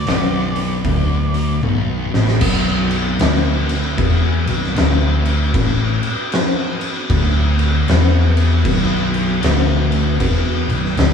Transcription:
Already playing: B3 F#4 B4 D5
0.04 B0 B1, open hi-hat
0.09 snare
0.56 open hi-hat
0.83 D1 D2, kick, open hi-hat
1.34 open hi-hat
1.61 B0 B1, high tom
2.11 A1 A2, snare
2.28 snare
2.40 B0 B1 B3 F#4 B4, kick, crash
2.91 crash
3.19 D1 D2, snare, crash
3.69 crash
3.97 E1 E2, kick, crash
4.46 B0 B1, crash
4.63 snare
4.75 D1 D2, snare, crash
5.25 crash
5.54 A1 A2, kick, crash
6.03 crash
6.32 snare, crash
6.81 crash
7.10 D1 D2, kick, crash
7.59 crash
7.88 E1 E2, snare, crash
8.37 crash
8.65 B0 B1, kick, crash
9.14 crash
9.42 D1 D2, snare, crash
9.92 crash
10.20 E1 E2, kick, crash
10.69 B0 B1, crash
10.85 snare
10.97 D1 D2, snare, crash

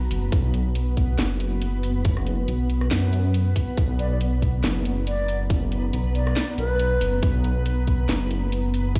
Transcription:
Already playing: B3 F#4
0.11 F#1, open hi-hat
0.32 B1, kick, closed hi-hat
0.54 closed hi-hat
0.75 closed hi-hat
0.97 kick, closed hi-hat
1.19 F#1, snare, closed hi-hat
1.40 closed hi-hat
1.62 closed hi-hat
1.83 open hi-hat
2.05 kick, closed hi-hat
2.17 cross-stick
2.27 closed hi-hat
2.48 B1, closed hi-hat
2.70 closed hi-hat
2.81 cross-stick
2.91 F#2, snare, closed hi-hat
3.13 closed hi-hat
3.34 closed hi-hat
3.56 kick, open hi-hat
3.77 B1 A#5, kick, closed hi-hat
3.99 D5, closed hi-hat
4.11 D5
4.21 closed hi-hat
4.42 kick, closed hi-hat
4.64 F#1, snare, closed hi-hat
4.85 closed hi-hat
5.07 D5, closed hi-hat
5.28 open hi-hat
5.50 kick, closed hi-hat
5.72 closed hi-hat
5.93 B1, closed hi-hat
6.15 D5, closed hi-hat
6.27 cross-stick
6.36 snare, closed hi-hat
6.58 B1 B4, closed hi-hat
6.79 closed hi-hat
7.01 F#1, open hi-hat
7.23 B1, kick, closed hi-hat
7.44 closed hi-hat
7.66 closed hi-hat
7.87 kick, closed hi-hat
8.09 F#1, snare, closed hi-hat
8.31 closed hi-hat
8.52 closed hi-hat
8.74 open hi-hat
8.95 kick, closed hi-hat

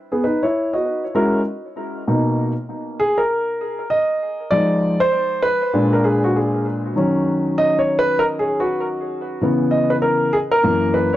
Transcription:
0.12 B3 G#4
0.24 D#4 B4
0.43 E4 C#5
0.73 F#4 D#5
1.15 G#3 C#4 E4 F#4 A#4
2.08 B2 A#3 D#4
3.00 G#4
3.18 A#4
3.90 D#5
4.51 F3 G#3 D#4 D5
5.00 C5
5.43 B4
5.74 A#2 G#3 D4
5.93 A#4
6.04 G#4
6.24 F#4
6.36 G#4
6.96 D#3 F#3 C#4
7.58 D#5
7.79 C#5
7.99 B4
8.19 A#4
8.39 G#4
8.60 F#4
9.41 C#3 E3 B3
9.71 D#5
9.90 B4
10.02 A#4
10.33 G#4
10.51 A#4
10.63 F#2 E3 A#3
10.94 B4

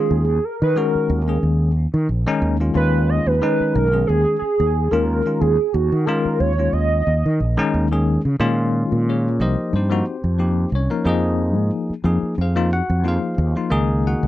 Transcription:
Already playing: D#3 G#3 C#4 F4 G#4
0.11 D#2
0.28 C#4 F4
0.44 A#4
0.62 D#3 B4
0.76 D#3 G#3 C#4 F#4 A#4
0.95 muted fretless electric bass stroke
1.10 D#2
1.27 D#3 G#3 C#4 G#4
1.43 D#2
1.77 C#4 D#4
1.94 D#3
2.09 A#1
2.26 D#3 G#3 C#4 D#4
2.42 D#2
2.60 D#3 G#3 C#4 F4
2.74 D#2 D#3 G#3 C#4 F4 B4
3.09 D#5
3.26 D#2 B4
3.41 D#3 G#3 C#4 D#4
3.60 muted fretless electric bass stroke
3.74 B1 A#4
3.92 D#3 G#3 C#4 G#4
4.07 D#2 G#4
4.39 C#4 G#4, muted fretless electric bass stroke
4.60 D#2
4.91 D#2 D#3 G#3 C#4 F4 A#4
5.25 D#3 G#3 C#4 F4
5.40 D#2 G#4
5.59 C#4 F4
5.73 D#2 F#4
5.92 D#3
6.05 D#3 G#3 C#4 F4 A#4
6.25 muted fretless electric bass stroke
6.39 D#2 C#5
6.58 D#3 G#3 C#4 F4
6.73 D#2 D#5
7.07 D#2 C#4 F4
7.26 D#3
7.40 A#1
7.57 D#3 G#3 C#4 D#4
7.74 D#2
7.91 D#3 G#3 C#4 G#4
8.25 C#3 C#4 F4
8.40 A#2 D#3 G#3 C#4 F4
8.92 A#2
9.09 C#4 G#4 A#4 C#5
9.40 C2 F3 A#3 D#4 G4 A#4 C5 D#5
9.73 G2 C4 D#4 G4 C5
9.90 F3 A#3 D#4 F#4
10.06 D#4 F#4
10.24 F2
10.38 F3 A#3 D#4 G4
10.72 C2 D#4 A#4 C#5
10.76 C#4
10.90 F3 A#3 D#4 A#4
11.04 F2 F3 A#3 D#4 G#4
11.09 C5 D#5
11.56 G#2
11.90 muted fretless electric bass stroke
12.04 F2 F3 A#3 D#4 G#4
12.23 muted fretless electric bass stroke
12.38 F2 D#4 F4 C5 F5
12.42 G#4
12.56 F3 A#3 D#4 F4
12.71 D#4 F#4 G#4 F#5
12.90 F2
13.04 F3 A#3 D#4 F4
13.08 F4 G#4 C5 F5
13.37 D#2 D#4 A#4
13.55 F3 A#3 D#4 F4, muted fretless electric bass stroke
13.70 C#2 D#3 A#3 D#4 G#4
14.07 F#4 F#5
14.23 C#2

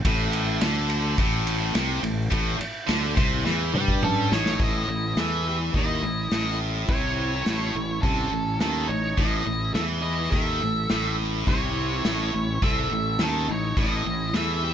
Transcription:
0.05 A1 A2, kick, ride
0.33 ride
0.61 D2 D3, snare, ride
0.90 ride
1.18 A1 A2, kick, ride
1.47 ride
1.75 C2 C3, snare, ride
2.03 A1 A2, ride
2.31 A1 A2, kick, ride
2.59 muted distorted electric guitar stroke, muted fingered electric bass stroke, ride
2.87 D2 D3, snare, ride
3.16 C2 C3, kick, ride
3.45 E2 E3, snare
3.74 G2 G3, mid tom
3.88 kick
4.03 C#4 A4, mid tom
4.31 A1 A2 D#4 C#5, snare
4.46 snare
4.60 A1 A2 E4 D#5, kick, open hi-hat
4.88 A1 A2
5.16 E2 E3 A4 E5, snare, open hi-hat
5.48 G4 E5
5.74 D#2 D#3 E4 D#5, kick, open hi-hat
6.03 A1 A2
6.31 A1 A2, snare, open hi-hat
6.89 C2 C3 E4 C#5, kick, open hi-hat
7.46 A1 A2, snare, open hi-hat
7.75 A1 A2
8.02 C2 C3 C#4 A4, kick, open hi-hat
8.32 A1 A2
8.60 D#2 D#3 C#4 A4, snare, open hi-hat
8.88 A1 A2 D#4 C#5
9.17 A1 A2 E4 D#5, kick, open hi-hat
9.47 A1 A2
9.74 E2 E3 A4 E5, snare, open hi-hat
10.02 E4 D#5
10.30 D#2 D#3 A4 E5, kick, open hi-hat
10.62 A1 A2
10.89 A1 A2, snare, open hi-hat
11.47 C2 C3 E4 C#5, kick, open hi-hat
12.04 A1 A2, snare, open hi-hat
12.34 A1 A2
12.62 C2 C3 A4 E5, kick, open hi-hat
12.92 A1 A2
13.19 D#2 D#3 C#4, snare, open hi-hat
13.23 A4
13.49 A1 A2 D#4 C#5
13.77 A1 A2 E4 D#5, kick, open hi-hat
14.06 A1 A2
14.34 E2 E3 A4 E5, snare, open hi-hat
14.64 G4 E5

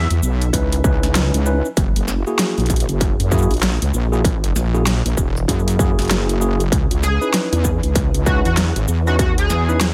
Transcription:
0.10 E2, closed hi-hat, shaker
0.22 B1, shaker
0.42 closed hi-hat, shaker
0.53 C#2 C#4 D#4 E4 B4, kick, closed hi-hat, shaker
0.72 closed hi-hat, shaker
0.84 C#2 C#4 D#4 E4 B4, kick, shaker
1.03 snare, closed hi-hat, shaker
1.15 snare, closed hi-hat, shaker
1.34 C#2, closed hi-hat, shaker
1.46 C#4 D#4 E4 B4, shaker
1.65 shaker
1.77 F#1, kick, closed hi-hat, shaker
1.96 F#1, closed hi-hat, shaker
2.08 snare, shaker
2.27 A#3 E4 F#4 G#4, shaker
2.39 snare, closed hi-hat, shaker
2.58 A#1, closed hi-hat, shaker
2.60 closed hi-hat
2.66 kick, closed hi-hat
2.70 closed hi-hat, shaker
2.76 closed hi-hat
2.80 closed hi-hat
2.89 F#1, closed hi-hat, shaker
3.01 kick, closed hi-hat, shaker
3.20 F#2, closed hi-hat, shaker
3.31 A#3 E4 F#4 G#4, kick, shaker
3.38 shaker
3.42 shaker
3.51 A#1, closed hi-hat, shaker
3.54 closed hi-hat
3.57 closed hi-hat
3.60 snare, closed hi-hat
3.63 closed hi-hat, shaker
3.68 closed hi-hat
3.72 closed hi-hat
3.77 closed hi-hat
3.82 C#2, closed hi-hat, shaker
3.94 A#1, shaker
4.12 A#3 E4 F#4 G#4, shaker
4.25 kick, closed hi-hat, shaker
4.44 closed hi-hat
4.55 A#1, snare, shaker
4.74 A#3 E4 F#4 G#4, shaker
4.87 snare, closed hi-hat, shaker
5.05 A#1, closed hi-hat, shaker
5.17 E1, kick, shaker
5.37 shaker
5.48 F#2 A#3 E4 F#4 G#4, kick, closed hi-hat, shaker
5.59 shaker
5.68 closed hi-hat, shaker
5.79 A#3 E4 F#4 G#4, kick, shaker
5.98 F#1, snare, closed hi-hat, shaker
6.02 closed hi-hat
6.05 closed hi-hat
6.08 snare, closed hi-hat
6.11 closed hi-hat, shaker
6.29 closed hi-hat, shaker
6.41 A#3 E4 F#4 G#4, shaker
6.60 closed hi-hat, shaker
6.72 C#2, kick, closed hi-hat, shaker
6.91 C#2, closed hi-hat, shaker
7.03 G#4, snare, shaker
7.21 C#4 D#4 E4 B4, shaker
7.34 snare, closed hi-hat, shaker
7.52 E2, closed hi-hat, shaker
7.64 kick, shaker
7.83 C#2, closed hi-hat, shaker
7.95 kick, closed hi-hat, shaker
8.14 C#2, closed hi-hat, shaker
8.26 C#4 D#4 E4 F#4 B4, kick, shaker
8.45 E2 F#4, closed hi-hat, shaker
8.57 snare, closed hi-hat, shaker
8.76 G#1, closed hi-hat, shaker
8.88 E2, shaker
9.07 C#4 D#4 E4 F#4 B4, shaker
9.19 F#4, kick, closed hi-hat, shaker
9.31 D#2
9.38 G#4, closed hi-hat, shaker
9.50 E2, snare, shaker
9.69 C#4 D#4 E4 B4, shaker
9.81 snare, closed hi-hat, shaker

